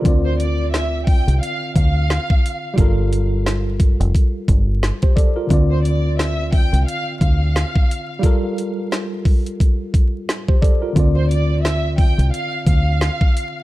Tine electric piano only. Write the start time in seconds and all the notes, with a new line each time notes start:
Already playing: A#4
0.01 D3 C4
0.06 F4 D5
2.74 G3 F4
2.78 A4 A#4
5.02 G4 C5
5.16 A4 D5
5.36 F4 A#4
5.47 D3 C4
5.51 F4 D5
8.19 G3 F4
8.24 A4 A#4
10.48 G4 C5
10.62 A4 D5
10.82 F4 A#4
10.93 D3 C4
10.97 F4 D5